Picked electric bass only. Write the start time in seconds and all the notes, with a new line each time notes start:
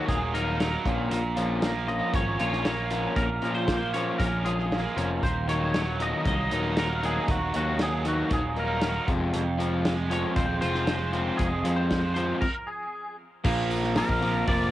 0.09 D#1
0.86 A#1
1.11 A#1
2.14 G#1
2.39 A#1
3.17 A#1
3.42 A#2
4.20 A#1
4.97 F1
5.23 D#1
6.26 C2
6.52 D#1
7.28 D#1
7.56 D#2
8.31 D#1
9.08 F1
9.35 F1
10.36 D#1
10.63 F1
11.40 F1
11.65 F2
13.45 A#1
14.09 A#1
14.48 F1